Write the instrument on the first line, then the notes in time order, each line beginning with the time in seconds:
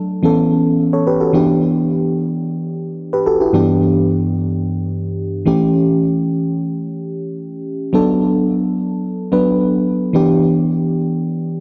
fm electric piano
Already playing: F#3 A3 D4 A4
0.23 E3 B3 C#4 A4
0.93 A4 C#5
1.07 G4 B4
1.20 F#4 A4
1.33 E3 B3 D4 G4
3.13 G4 B4
3.26 F#4 A4
3.41 E4 G4
3.53 G2 E3 B3 D4 G4
5.46 E3 A3 C#4 G4
7.93 F#3 B3 D4 A4
9.32 F#3 B3 D4 B4
10.13 E3 B3 D4 G4